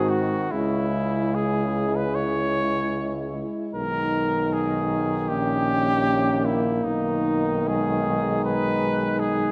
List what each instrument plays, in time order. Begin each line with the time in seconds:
Already playing: tuba G#2, trombone D#3, euphonium C4, french horn section F#4, cornet G#4
0.10 cornet F#4
0.51 tuba C#2, trombone C#3, euphonium G#3, cornet E4, french horn section E4
1.35 cornet G#4
1.96 cornet B4
2.15 cornet C#5
3.74 tuba B1, trombone D#3, french horn section D#4, cornet A#4
4.53 cornet G#4
5.29 tuba A#1, euphonium A#3, french horn section C#4, cornet G4
6.45 cornet E4
6.84 tuba B1, trombone D#3, cornet D#4, french horn section D#4
7.68 euphonium G#3, cornet G#4
8.45 cornet B4
9.20 cornet G#4